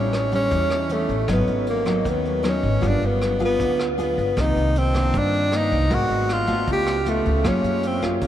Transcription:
Already playing: A1 A2 G3 B3 C#4
0.13 cross-stick, closed hi-hat
0.32 G3 B3 C#4, kick, closed hi-hat
0.51 E2 E3, kick, closed hi-hat
0.70 cross-stick, closed hi-hat
0.89 G3 A3 B3 C#4, closed hi-hat
1.09 A1, kick, closed hi-hat
1.28 G#1 G#2 F#3 B3 D#4, kick, cross-stick, closed hi-hat
1.32 B3
1.47 G#1, closed hi-hat
1.67 A#3, closed hi-hat
1.85 F#3 B3 D#4, kick, cross-stick, closed hi-hat
2.04 D#2 D#3, kick, closed hi-hat
2.09 B3
2.25 closed hi-hat
2.43 F#3 B3 D#4, cross-stick, closed hi-hat
2.48 C#4
2.63 G#1, kick, closed hi-hat
2.81 G1 G3 B3 F4 G#4, kick, closed hi-hat
2.87 D4
3.02 G1 B3, closed hi-hat
3.21 cross-stick, closed hi-hat
3.39 B3 F4 G#4, kick, closed hi-hat
3.45 B3
3.59 D2 D3, kick, closed hi-hat
3.79 cross-stick, closed hi-hat
3.98 B3 F4 G#4, closed hi-hat
4.02 B3
4.18 G1, kick, closed hi-hat
4.36 C2 C3 D#3 A#3 D#4, kick, cross-stick, closed hi-hat
4.56 C2, closed hi-hat
4.75 C4, closed hi-hat
4.94 D#3 A#3 D4, kick, cross-stick, closed hi-hat
5.13 G2, kick, closed hi-hat
5.18 D4
5.34 closed hi-hat
5.51 D#3 A#3, cross-stick, closed hi-hat
5.56 D#4
5.72 C2, kick, closed hi-hat
5.90 G#1 G#3 B3 F#4 A#4, kick, closed hi-hat
5.94 F#4
6.10 G#1, closed hi-hat
6.29 F4, cross-stick, closed hi-hat
6.47 A3 B3 F4, kick, closed hi-hat
6.67 C#2 C#3, kick, closed hi-hat
6.72 G4
6.86 cross-stick, closed hi-hat
7.05 A3 B3 F4, closed hi-hat
7.25 C#2, kick, closed hi-hat
7.44 F#2 F#3 A#3 C#4 F4 G#4, kick, cross-stick, closed hi-hat
7.64 F#2, closed hi-hat
7.83 C4, closed hi-hat
8.02 A#3 F4 G#4, kick, cross-stick, closed hi-hat
8.21 C#2 C#3, kick, closed hi-hat

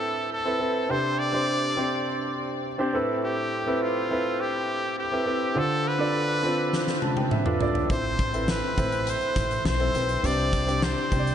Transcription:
Already playing: A2 C4 E4 A4 B4 C5
0.33 A4
0.45 C4 E4 A4 B4
0.59 C4 E4 A4 B4
0.89 C3 C4 D4 G4 C5
1.19 D5
1.32 C4 D4 G4 C5
1.77 C4 D4 G4 C5
2.78 C4 D4 G4 C5
2.93 A2 C4 E4 A4 B4
3.24 G4
3.66 C4 E4 A4 B4
3.82 F4
4.10 C4 E4 A4 B4
4.41 G4
4.99 G4
5.12 C4 E4 A4 B4
5.26 C4 E4 A4 B4
5.55 D3 D4 F4 A4 C5
5.88 B4
5.99 D4 F4 A4 D5
6.43 C4 D4 F4 A4
6.73 snare
6.87 snare
7.02 A5, high tom
7.17 G5, high tom
7.31 E5, mid tom
7.46 D4 F4 A4 B4, mid tom
7.60 D4 F4 A4 D5, floor tom
7.75 floor tom
7.89 A1 A2 C4 E4 C5, kick, closed hi-hat
8.19 kick, closed hi-hat
8.33 C4 E4 A4 B4, closed hi-hat
8.48 B4, snare
8.77 A1 C4 E4 A4 C5, kick, closed hi-hat
8.92 closed hi-hat
9.07 C5, closed hi-hat
9.21 closed hi-hat
9.36 A1, kick, snare, closed hi-hat
9.51 closed hi-hat
9.65 B1 C5, snare
9.79 C4 E4 A4 C5, closed hi-hat
9.94 B1 C4 E4 A4 B4, closed hi-hat
10.09 closed hi-hat
10.23 C2 C3 C4 D4 G4 C5 D5, closed hi-hat
10.53 kick, closed hi-hat
10.66 C4 D4 G4 C5, closed hi-hat
10.82 C5, snare
10.98 closed hi-hat
11.11 C2 C4 D4 G4 C5, kick, closed hi-hat
11.19 D5
11.27 closed hi-hat

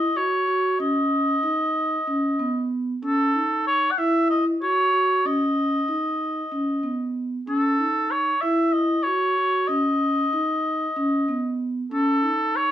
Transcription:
Already playing: D#5
0.16 F#4 C#5
0.48 F#4
0.80 C#4 D#5
1.43 D#4
2.07 C#4
2.39 B3
3.03 C#4 A4
3.35 D#4
3.67 C#5
3.91 F#5
3.98 E4 E5
4.30 D#5
4.62 F#4 C#5
4.93 F#4
5.25 C#4 D#5
5.88 D#4
6.52 C#4
6.83 B3
7.47 C#4 A4
7.79 D#4
8.11 C#5
8.41 E4 E5
8.73 D#5
9.03 F#4 C#5
9.38 F#4
9.68 C#4 D#5
10.33 D#4
10.96 C#4
11.28 B3
11.91 C#4 A4
12.23 D#4
12.56 C#5

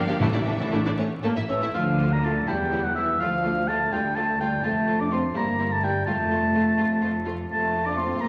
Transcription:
Already playing: F3 F5
0.07 G1 A#3 D4 G4 D5
0.20 A1 A2 E3 A3 D4 E4 E5
0.33 A1 A3 D4 E4 D5
0.46 A1 A3 D4 A4
0.59 A1 A3 D4 E4 D5
0.71 A1 A3 D4 E4
0.85 A1 A3 D4 E4 D5
0.97 A1 A3 C#4 C#5
1.23 A1 A3 A#3 A4
1.36 A1 E4 E5
1.49 A1 E3 A3 C#4 C#5 E5
1.61 A1 E4 E5
1.74 D2 D3 F3 A3 F4 D5 F5
1.98 A3 F4 D5
2.11 A#3 A#5
2.23 A3 F4 D5 A5
2.47 E1 E2 G3 E4 C#5 G5
2.71 G3 E4 C#5
2.84 F#3 F#5
2.95 E3 G3 E4 C#5 E5
3.20 D2 F3 A3 F4 D5 F5
3.44 A3 F4 D5
3.68 A3 F4 D5 A5
3.92 D2 G3 A3 F4 D5 G5
4.15 A3 F4 D5 A5
4.40 G3 A3 F4 D5 G5
4.64 F1 F2 A3 F4 C5 A5
4.87 A3 F4 C5
5.00 D4 D6
5.12 A3 C4 F4 C5 C6
5.34 G1 G2 G3 A#3 E4 A#4 A#5
5.59 G3 E4 A#4
5.72 A3 A5
5.82 G3 E4 A#4 G5
6.05 F1 F2 A3 F4 C5 A5
6.31 A3 F4 C5
6.54 A3 F4 C5
6.78 F1 F2 A3 F4 C5
7.01 A3 F4 C5
7.25 A3 F4 C5
7.48 F1 F2 A3 F4 C5 A5
7.86 D4 D6
7.97 C4 C6
8.20 A#1 A#2 A#3 D5 A#5

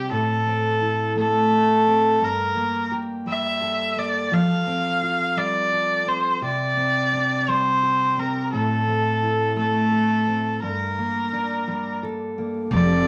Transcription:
Already playing: C3 G3 C4 D4 G4
0.11 A2 A4
0.46 C4
0.81 E4
1.16 A3 A4
1.86 C4
2.21 G2 A#4
2.55 A#3
2.91 G4
3.26 G3 E5
3.61 A4
3.96 A#3 D5
4.31 F3 A4 F5
4.67 C4
5.02 F4
5.36 G3 D5
5.72 A4
6.07 C4 C5
6.41 C3 G4 D5
6.77 C4
7.13 D4
7.48 G3 C5
7.83 G4
8.17 C4 A#4
8.53 A2 A4
8.87 C4
9.22 E4
9.56 A3 A4
9.92 A4
10.27 C4
10.62 G2 A#4
10.98 A#3
11.33 D4
11.67 G3
12.03 A4
12.38 A#3
12.71 F1 F3 C4 G4 A4 D5
12.90 C4

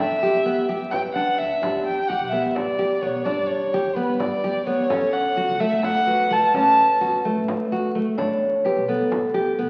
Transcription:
Already playing: A4 E5
0.00 E2 D4, frame drum
0.23 G4
0.35 E2
0.45 B3, frame drum
0.69 E3 G4
0.91 B4 G5, frame drum
1.05 E2
1.13 D4 F#5
1.38 D2 E5
1.62 E2 D4 G4, frame drum
1.75 E2
1.86 G5
2.08 E2 G4 F#5
2.21 B1
2.26 E5 F#5
2.32 B3
2.44 E2 E5
2.55 D5, frame drum
2.79 G4
3.01 B1 B3 C#5
3.24 E2 D4 D5, frame drum
3.38 G2
3.46 C#5, frame drum
3.74 E2 G4
3.85 D2
3.95 B3 B4
4.09 G2
4.19 D5, frame drum
4.44 D2 G4
4.66 B3 C#5
4.90 E2 C#4 A4, frame drum
5.02 E2
5.13 F#5, frame drum
5.37 E2 F#4
5.49 C#2
5.60 A3 E5
5.72 E2
5.83 F#5, frame drum
6.07 F#4 B4
6.31 C#2 A3 A5
6.54 E2 C#4, frame drum
6.59 A5
6.65 A2
7.01 E2 F#4
7.12 E2
7.25 A3
7.36 A2
7.48 frame drum
7.71 E2 F#4
7.95 A3
8.17 E2 D4 C#5, frame drum
8.30 E2
8.41 frame drum
8.64 E2 G4 B4
8.76 B1
8.88 B3 A4
9.00 E2
9.12 frame drum
9.34 G4
9.59 B1 B3

